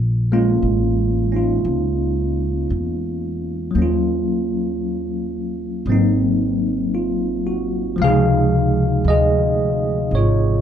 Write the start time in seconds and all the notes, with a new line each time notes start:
Already playing: A#1
0.32 G#3 A#3 C#4 F4
0.62 A1
1.32 C#4 D#4
1.36 F4
1.65 C#2
2.70 E2
3.71 F#3 A#3
3.75 D#2 C#4
3.82 F4
5.86 G#1 F#3 A#3
5.90 C4 D#4
6.95 F4
7.47 F#4
7.96 C#2 F3 G#3
8.02 C3 G#4 F5
8.07 D#4
9.04 D2 D#5
9.10 G#4
10.11 G#1
10.15 F4 C#5